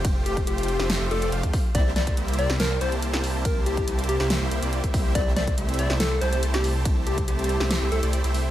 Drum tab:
RD |x---------------x---------------|x---------------x---------------|x---------------x---------------|x---------------x---------------|
HH |x---x-x-x-xxx---x---x-x-x-x-o---|x---x-x-x-xxx---x---x-x-x-x-o---|x---x-x-x-xxx---x---x-x-x-x-o---|x---x-x-x-xxx---x---x-x-x-x-o---|
SD |--------------o-o---------------|----o---------o-o---------o-----|--------------o-o---------------|----o---------o-o---------o-----|
BD |o-----o-------------------o-o---|o-----o-------------------------|o-----o-------------------o-o---|o-----o-------------------------|

RD |x---------------x---------------|
HH |x---x-x-x-xxx---x---x-x-x-x-o---|
SD |--------------o-o---------------|
BD |o-----o-------------------------|